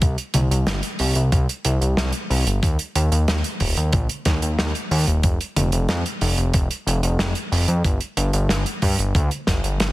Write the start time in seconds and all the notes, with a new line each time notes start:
0.02 C2, kick, closed hi-hat
0.18 closed hi-hat
0.34 C2, closed hi-hat, mid tom
0.51 C2, closed hi-hat
0.67 G1, snare, closed hi-hat
0.83 closed hi-hat
0.99 C2, open hi-hat
1.15 C2, closed hi-hat
1.32 C2, kick, closed hi-hat
1.49 closed hi-hat
1.65 C2, closed hi-hat
1.81 C2, closed hi-hat
1.97 C2, snare, closed hi-hat
2.13 closed hi-hat
2.30 C2, open hi-hat
2.47 G1, closed hi-hat
2.63 D#2, kick, closed hi-hat
2.79 closed hi-hat
2.95 D#2, closed hi-hat
3.12 D#2, closed hi-hat
3.28 D#2, snare, closed hi-hat
3.44 closed hi-hat
3.60 D#1, kick, open hi-hat
3.77 D#2, closed hi-hat
3.92 A#1, kick, closed hi-hat, mid tom
4.09 closed hi-hat
4.25 D#2, kick, snare, closed hi-hat
4.42 D#2, closed hi-hat
4.59 D#2, snare, closed hi-hat
4.75 closed hi-hat
4.91 D#2, open hi-hat
5.07 D#1, closed hi-hat
5.23 F1, kick, closed hi-hat
5.41 closed hi-hat
5.56 F1, closed hi-hat, mid tom
5.72 F1, closed hi-hat
5.89 F2, snare, closed hi-hat
6.06 closed hi-hat
6.21 F1, open hi-hat
6.38 F1, closed hi-hat
6.54 F1, kick, closed hi-hat
6.71 closed hi-hat
6.87 F1, closed hi-hat
7.03 F1, closed hi-hat
7.19 snare, closed hi-hat
7.35 closed hi-hat
7.52 F1, open hi-hat
7.68 F2, closed hi-hat
7.84 G1, kick, closed hi-hat
8.01 closed hi-hat
8.17 G1, closed hi-hat
8.33 G1, closed hi-hat
8.49 G1, snare, closed hi-hat
8.66 closed hi-hat
8.82 G2, kick, open hi-hat
8.99 G1, closed hi-hat
9.15 D2, kick, closed hi-hat, mid tom
9.31 closed hi-hat
9.47 G1, kick, snare, closed hi-hat
9.64 G1, closed hi-hat
9.80 G1, snare, closed hi-hat